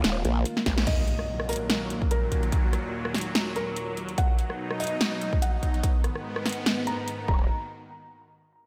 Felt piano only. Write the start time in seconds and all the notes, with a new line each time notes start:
0.87 D#5
1.49 A#4
2.11 A#4
3.56 A#4
4.18 F#5
4.80 D#5
5.42 F#5
6.87 A#5
7.28 A#5